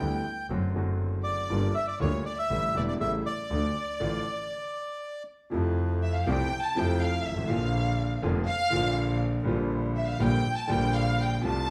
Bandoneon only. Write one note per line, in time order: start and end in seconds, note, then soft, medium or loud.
0.00 0.47 G5 medium
1.24 1.76 D5 medium
1.74 1.86 E5 medium
1.88 1.99 D5 medium
2.01 2.24 C#5 medium
2.26 2.38 D5 medium
2.39 2.77 E5 medium
2.76 2.82 D5 medium
2.88 2.94 D5 medium
3.01 3.12 E5 medium
3.26 5.23 D5 medium